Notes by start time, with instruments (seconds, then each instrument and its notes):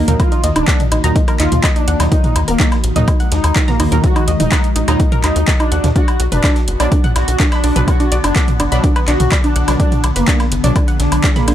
Already playing: ambient pad D#3 A#3 F#4, analog synth lead A#3, downlifter
0.08 analog synth bass D#2, synth stab A#2 F#3 D#4, synth arpeggio sound A#4 A#5, closed hi-hat, mid tom
0.20 analog synth lead F4, kick, closed hi-hat, low woodblock
0.32 synth arpeggio sound D#4 D#5, closed hi-hat
0.44 analog synth bass D#2, synth arpeggio sound D#5 D#6, closed hi-hat
0.56 analog synth bass D#1, analog synth lead D4, synth arpeggio sound D#4 D#5, closed hi-hat, low woodblock
0.68 synth arpeggio sound F#5 F#6, kick, snare, clap, closed hi-hat
0.80 closed hi-hat, mid tom
0.92 analog synth bass A#1, synth arpeggio sound D#4 D#5, closed hi-hat, low woodblock
1.04 analog synth bass D#2, synth stab A#2 F#3 D#4, synth arpeggio sound A#5 A#6, closed hi-hat
1.16 synth arpeggio sound D#4 D#5, kick, closed hi-hat
1.28 synth arpeggio sound A#4 A#5, closed hi-hat, low woodblock
1.40 analog synth bass D#2, synth arpeggio sound D#4 D#5, analog synth lead F4, snare, clap, closed hi-hat
1.52 analog synth bass D#2, closed hi-hat, mid tom
1.64 synth arpeggio sound D#5 D#6, kick, snare, clap, closed hi-hat, low woodblock
1.76 analog synth lead D4, synth arpeggio sound D#4 D#5, closed hi-hat
1.88 analog synth bass D#2, synth arpeggio sound F#5 F#6, closed hi-hat
2.00 analog synth bass D#2, synth stab A#2 F#3 D#4, snare, closed hi-hat, low woodblock
2.12 ambient pad G#3, analog synth lead D#4, synth arpeggio sound D#4 D#5, kick, closed hi-hat
2.24 closed hi-hat, mid tom
2.36 analog synth bass D#2, closed hi-hat, low woodblock
2.48 analog synth bass D#1, analog synth lead A#3, synth arpeggio sound A#4 A#5, closed hi-hat
2.60 synth arpeggio sound D#4 D#5, kick, snare, clap, closed hi-hat
2.72 snare, closed hi-hat, low woodblock
2.84 analog synth bass A#1, closed hi-hat
2.96 analog synth bass D#2, synth stab A#2 F#3 D#4, synth arpeggio sound D#5 D#6, closed hi-hat, mid tom
3.08 synth arpeggio sound D#4 D#5, kick, closed hi-hat, low woodblock
3.20 synth arpeggio sound F#5 F#6, closed hi-hat
3.32 analog synth bass D#2, analog synth lead D#4, snare, closed hi-hat
3.44 analog synth bass D#2, closed hi-hat, low woodblock
3.56 synth arpeggio sound D#4 D#5, kick, snare, clap, closed hi-hat
3.68 analog synth lead A#3, synth arpeggio sound A#5 A#6, snare, closed hi-hat, mid tom
3.80 analog synth bass D#2, synth arpeggio sound D#4 D#5, closed hi-hat, open hi-hat, low woodblock
3.92 analog synth bass D#2, synth stab A#2 F#3 D#4, synth arpeggio sound A#4 A#5, closed hi-hat
4.04 analog synth lead F#4, kick, closed hi-hat
4.16 synth arpeggio sound D#4 D#5, closed hi-hat, low woodblock
4.28 analog synth bass D#2, synth arpeggio sound D#5 D#6, closed hi-hat
4.40 analog synth bass D#1, synth arpeggio sound D#4 D#5, analog synth lead D#4, closed hi-hat, mid tom
4.52 synth arpeggio sound F#5 F#6, kick, snare, clap, closed hi-hat, low woodblock
4.64 closed hi-hat
4.76 analog synth bass A#1, synth arpeggio sound D#4 D#5, closed hi-hat
4.88 analog synth bass D#2, synth stab A#2 F#3 D#4, synth arpeggio sound A#5 A#6, closed hi-hat, low woodblock
5.00 synth arpeggio sound D#4 D#5, kick, closed hi-hat
5.12 synth arpeggio sound A#4 A#5, closed hi-hat, mid tom
5.24 analog synth bass D#2, analog synth lead D#4, synth arpeggio sound D#4 D#5, snare, clap, closed hi-hat, low woodblock
5.36 analog synth bass D#2, closed hi-hat
5.48 synth arpeggio sound D#5 D#6, kick, snare, clap, closed hi-hat
5.60 analog synth lead D4, synth arpeggio sound D#4 D#5, closed hi-hat, low woodblock
5.72 analog synth bass D#2, synth arpeggio sound F#5 F#6, closed hi-hat
5.84 analog synth bass D#2, snare, closed hi-hat, mid tom
5.96 ambient pad D3 B3, synth arpeggio sound D4 D5, analog synth lead F#4, kick, closed hi-hat
6.08 closed hi-hat, low woodblock
6.20 analog synth bass B1, closed hi-hat
6.32 analog synth bass F#1, analog synth lead D4, synth arpeggio sound B4 B5, closed hi-hat, mid tom
6.44 synth arpeggio sound D4 D5, kick, snare, clap, closed hi-hat, low woodblock
6.56 snare, closed hi-hat
6.68 analog synth bass F#1, closed hi-hat
6.80 analog synth bass B1, synth stab B2 F#3 D4, synth arpeggio sound D5 D6, closed hi-hat, low woodblock
6.92 synth arpeggio sound D4 D5, kick, closed hi-hat
7.04 synth arpeggio sound F#5 F#6, closed hi-hat, mid tom
7.16 analog synth bass B1, analog synth lead F#4, snare, closed hi-hat, low woodblock
7.28 analog synth bass B1, closed hi-hat
7.40 synth arpeggio sound D4 D5, kick, snare, clap, closed hi-hat
7.52 analog synth lead D4, synth arpeggio sound B5, snare, closed hi-hat, low woodblock
7.64 analog synth bass B1, synth arpeggio sound D4 D5, closed hi-hat, open hi-hat
7.76 analog synth bass B1, synth stab B2 F#3 D4, synth arpeggio sound B4 B5, closed hi-hat, mid tom
7.88 analog synth lead F#4, kick, closed hi-hat, low woodblock
8.00 synth arpeggio sound D4 D5, closed hi-hat
8.12 analog synth bass B1, synth arpeggio sound D5 D6, closed hi-hat
8.24 analog synth bass F#1, synth arpeggio sound D4 D5, analog synth lead D4, closed hi-hat, low woodblock
8.36 synth arpeggio sound F#5 F#6, kick, snare, clap, closed hi-hat
8.48 closed hi-hat, mid tom
8.60 analog synth bass F#1, synth arpeggio sound D4 D5, closed hi-hat, low woodblock
8.72 analog synth bass B1, synth stab B2 F#3 D4, synth arpeggio sound B5, closed hi-hat
8.84 synth arpeggio sound D4 D5, kick, closed hi-hat
8.96 synth arpeggio sound B4 B5, closed hi-hat, low woodblock
9.08 analog synth bass B1, synth arpeggio sound D4 D5, analog synth lead F#4, snare, clap, closed hi-hat
9.20 analog synth bass B1, closed hi-hat, mid tom
9.32 synth arpeggio sound D5 D6, kick, snare, clap, closed hi-hat, low woodblock
9.44 analog synth lead D4, synth arpeggio sound D4 D5, closed hi-hat
9.56 analog synth bass B1, synth arpeggio sound F#5 F#6, closed hi-hat
9.68 analog synth bass B1, synth stab B2 F#3 D4, snare, closed hi-hat, low woodblock
9.80 analog synth lead D4, synth arpeggio sound D4 D5, ambient pad G#4, kick, closed hi-hat
9.92 closed hi-hat, mid tom
10.04 analog synth bass B1, closed hi-hat, low woodblock
10.16 analog synth bass F#1, analog synth lead A#3, synth arpeggio sound B4 B5, closed hi-hat
10.28 synth arpeggio sound D4 D5, kick, snare, clap, closed hi-hat
10.40 snare, closed hi-hat, low woodblock
10.52 analog synth bass F#1, closed hi-hat
10.64 analog synth bass B1, synth stab B2 F#3 D4, synth arpeggio sound D5 D6, closed hi-hat, mid tom
10.76 synth arpeggio sound D4 D5, kick, closed hi-hat, low woodblock
10.88 synth arpeggio sound F#5 F#6, closed hi-hat
11.00 analog synth bass B1, analog synth lead D4, snare, closed hi-hat
11.12 analog synth bass B1, closed hi-hat, low woodblock
11.24 synth arpeggio sound D4 D5, kick, snare, clap, closed hi-hat
11.36 analog synth lead A#3, synth arpeggio sound B5, snare, closed hi-hat, mid tom
11.48 analog synth bass B1, synth arpeggio sound D4 D5, closed hi-hat, open hi-hat, low woodblock